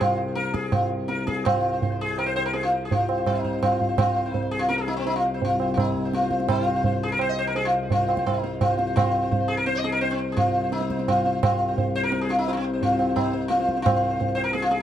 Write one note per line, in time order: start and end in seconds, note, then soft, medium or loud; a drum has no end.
0.00 1.44 C2 medium
0.00 1.45 C3 medium
0.00 0.17 F4 medium
0.00 tabla na medium
0.00 tabla ge medium
0.18 0.35 C5 soft
0.35 0.53 A#4 loud
0.35 tabla te medium
0.54 0.71 G#4 medium
0.54 tabla ke medium
0.72 0.89 F4 medium
0.72 tabla na medium
0.72 tabla ge medium
1.08 1.26 A#4 medium
1.08 tabla te medium
1.27 1.44 G#4 medium
1.27 tabla ke medium
1.45 11.40 C2 medium
1.45 11.41 C3 medium
1.45 1.96 F4 medium
1.45 1.53 C5 soft
1.45 tabla na loud
1.45 tabla ge loud
1.54 1.71 C5 soft
1.73 1.82 C5 soft
1.82 1.91 C5 soft
1.82 tabla tin medium
1.82 tabla ge medium
1.92 2.08 C5 soft
2.01 2.18 G#4 medium
2.11 2.25 C5 soft
2.18 2.26 A#4 loud
2.18 tabla na medium
2.26 2.35 C5 medium
2.36 2.45 C5 loud
2.36 tabla na medium
2.45 2.53 A#4 medium
2.53 2.62 G#4 medium
2.53 tabla tin medium
2.63 2.72 F4 medium
2.72 2.85 C5 soft
2.85 2.91 G#4 medium
2.91 3.27 F4 medium
2.91 tabla tin medium
2.91 tabla ge medium
3.00 3.16 C5 soft
3.09 tabla na medium
3.18 3.34 C5 soft
3.26 3.62 D#4 medium
3.26 tabla na medium
3.26 tabla ge medium
3.36 3.43 C5 soft
3.44 3.52 C5 soft
3.44 tabla ge medium
3.53 3.70 C5 soft
3.62 3.98 F4 medium
3.62 tabla na medium
3.62 tabla ge medium
3.71 3.79 C5 soft
3.80 3.87 C5 soft
3.80 tabla ge medium
3.89 4.06 C5 soft
3.98 4.32 F4 loud
3.98 tabla na loud
3.98 tabla ge loud
4.08 4.15 C5 soft
4.16 4.24 C5 soft
4.26 4.33 C5 soft
4.32 4.49 D#4 loud
4.32 4.41 C5 soft
4.32 tabla tin medium
4.32 tabla ge medium
4.42 4.60 C5 soft
4.51 4.60 G#4 loud
4.59 4.70 F4 medium
4.69 4.78 A#4 loud
4.69 tabla te medium
4.78 4.88 G#4 loud
4.88 4.96 D#4 loud
4.88 tabla te medium
4.97 5.05 C4 medium
5.06 5.15 D#4 loud
5.06 tabla tin medium
5.16 5.24 F4 medium
5.25 5.33 C5 soft
5.34 5.50 C5 soft
5.42 5.73 F4 medium
5.42 tabla tin medium
5.42 tabla ge medium
5.60 5.77 C5 soft
5.60 tabla na medium
5.74 5.79 F4 medium
5.74 tabla na medium
5.74 tabla ge medium
5.79 6.14 D#4 medium
5.95 tabla ge medium
6.05 6.22 C5 soft
6.13 6.48 F4 medium
6.13 tabla te medium
6.22 6.31 C5 soft
6.22 tabla te medium
6.31 6.48 C5 soft
6.31 tabla ke medium
6.40 tabla te medium
6.49 7.04 F4 loud
6.49 tabla na loud
6.49 tabla ge loud
6.58 6.66 C5 soft
6.67 6.75 C5 soft
6.76 6.84 C5 soft
6.84 6.93 C5 soft
6.84 tabla tin medium
6.84 tabla ge medium
6.94 7.10 C5 soft
7.03 7.12 G#4 loud
7.12 7.21 A#4 medium
7.19 7.29 C5 loud
7.19 tabla na medium
7.29 7.38 D#5 loud
7.39 7.47 C5 loud
7.47 7.55 A#4 medium
7.55 7.64 G#4 loud
7.55 tabla tin medium
7.65 7.73 F4 medium
7.74 7.90 C5 soft
7.90 8.26 F4 medium
7.90 tabla tin medium
7.90 tabla ge medium
8.01 8.08 C5 soft
8.09 8.18 C5 soft
8.09 tabla na medium
8.17 8.35 C5 soft
8.17 tabla ke medium
8.26 8.61 D#4 medium
8.26 tabla na medium
8.26 tabla ge medium
8.43 8.60 C5 soft
8.43 tabla te medium
8.61 8.95 F4 medium
8.61 tabla na medium
8.61 tabla ge medium
8.70 8.77 C5 soft
8.78 8.86 C5 soft
8.78 tabla te medium
8.87 9.04 C5 soft
8.96 9.51 F4 loud
8.96 tabla na loud
8.96 tabla ge loud
9.05 9.13 C5 soft
9.14 9.22 C5 soft
9.23 9.30 C5 soft
9.31 9.39 C5 soft
9.31 tabla tin medium
9.31 tabla ge medium
9.40 9.57 C5 soft
9.48 9.57 G#4 loud
9.57 9.66 A#4 loud
9.66 9.76 C5 loud
9.66 tabla te medium
9.75 9.85 D#5 loud
9.84 9.92 G#4 loud
9.84 tabla te medium
9.92 10.01 A#4 loud
10.01 10.11 C5 loud
10.01 tabla tin medium
10.11 10.19 C4 medium
10.19 10.32 C5 soft
10.32 10.38 G#4 medium
10.37 10.72 F4 medium
10.37 tabla tin medium
10.37 tabla ge medium
10.46 10.54 C5 soft
10.55 10.63 C5 soft
10.64 10.80 C5 soft
10.72 11.08 D#4 medium
10.72 tabla te medium
10.81 10.90 C5 soft
10.81 tabla te medium
10.90 10.98 C5 soft
10.90 tabla ke medium
10.99 11.15 C5 soft
10.99 tabla te medium
11.08 11.41 F4 medium
11.08 tabla na medium
11.08 tabla ge medium
11.16 11.24 C5 soft
11.25 11.32 C5 soft
11.25 tabla te medium
11.33 11.50 C5 soft
11.42 14.82 C2 medium
11.42 14.82 C3 medium
11.42 11.97 F4 loud
11.42 tabla na loud
11.42 tabla ge loud
11.51 11.67 C5 soft
11.68 11.77 C5 soft
11.78 11.94 C5 soft
11.78 tabla tin medium
11.78 tabla ge medium
11.95 12.03 C5 loud
12.03 12.20 A#4 loud
12.12 12.28 C5 soft
12.12 tabla te medium
12.21 12.30 G#4 medium
12.29 12.38 F4 medium
12.29 tabla te medium
12.39 12.47 D#4 medium
12.47 12.51 D#4 medium
12.47 12.50 F4 medium
12.47 tabla tin medium
12.53 12.57 F4 medium
12.57 12.65 C4 medium
12.64 12.72 C5 soft
12.73 12.89 C5 soft
12.82 13.15 F4 medium
12.82 tabla tin medium
12.82 tabla ge medium
12.92 12.98 C5 soft
12.99 13.08 C5 soft
12.99 tabla na medium
13.09 13.23 C5 soft
13.16 13.48 D#4 medium
13.16 tabla na medium
13.16 tabla ge medium
13.25 13.30 C5 soft
13.32 13.40 C5 soft
13.32 tabla te medium
13.41 13.58 C5 soft
13.48 13.81 F4 medium
13.48 tabla te medium
13.60 13.75 C5 soft
13.60 tabla te medium
13.69 tabla ke medium
13.77 13.93 C5 soft
13.77 tabla te medium
13.82 14.37 F4 loud
13.82 tabla na loud
13.82 tabla ge loud
13.94 14.01 C5 soft
14.03 14.09 C5 soft
14.10 14.18 C5 soft
14.19 14.27 C5 soft
14.19 tabla tin medium
14.19 tabla ge medium
14.28 14.34 C5 soft
14.35 14.43 C5 loud
14.35 tabla na medium
14.44 14.53 A#4 loud
14.53 14.63 G#4 loud
14.53 tabla te medium
14.62 14.72 F4 medium
14.71 14.80 G#4 loud
14.71 tabla te medium